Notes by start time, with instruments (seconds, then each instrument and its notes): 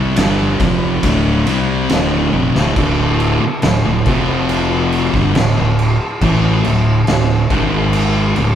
Already playing: fingered electric bass C2, distorted electric guitar C3 G3
0.16 fingered electric bass G1, distorted electric guitar G2 D3 G3, snare, ride
0.59 fingered electric bass F1, distorted electric guitar F2 C3 F3, kick, snare, ride
1.03 fingered electric bass D1, distorted electric guitar D2 A2 D3, kick, ride
1.46 fingered electric bass C2, distorted electric guitar C3 G3 C4, ride
1.89 fingered electric bass D1, distorted electric guitar D2 A2 D3, snare, ride
2.33 fingered electric bass F1, distorted electric guitar F2 C3, high tom
2.53 fingered electric bass D1, distorted electric guitar D2 A2, snare
2.75 fingered electric bass D1, distorted electric guitar D2 A2 D3, kick, crash
3.20 crash
3.41 muted distorted electric guitar stroke, muted fingered electric bass stroke
3.62 fingered electric bass D1, distorted electric guitar D2 A2, snare, crash
3.85 fingered electric bass D1, distorted electric guitar D2 A2
4.05 fingered electric bass F1, distorted electric guitar F2 C3 F3, kick, crash
4.49 crash
4.92 crash
5.14 fingered electric bass G1, distorted electric guitar G2 D3, kick, snare
5.35 fingered electric bass D1, distorted electric guitar D2 A2, snare, crash
5.57 fingered electric bass D1, distorted electric guitar D2 A2
5.79 crash
6.22 fingered electric bass A1, distorted electric guitar A2 E3 A3, kick, crash
6.65 fingered electric bass D1, distorted electric guitar D2 A2, crash
7.07 fingered electric bass D1, distorted electric guitar D2 A2, snare, crash
7.50 fingered electric bass G#1, distorted electric guitar G#2 D#3 G#3, kick, crash
7.93 crash
8.36 fingered electric bass D1, distorted electric guitar D2 A2, crash